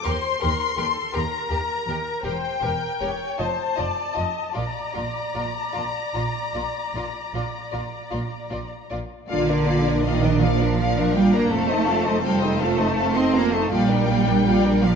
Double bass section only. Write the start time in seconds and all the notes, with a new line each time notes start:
0.05 D#2
0.42 D#2
0.78 D#2
1.14 D#2
1.51 D#2
1.87 D#2
2.24 E1
2.63 E1
3.02 E1
3.40 F1
3.79 F1
4.17 F1
4.56 A#1
4.96 A#1
5.36 A#1
5.75 A#1
6.15 A#1
6.54 A#1
6.94 A#1
7.34 A#1
7.73 A#1
8.12 A#1
8.52 A#1
8.92 A#1
9.31 A#1
11.51 F1
13.71 A#1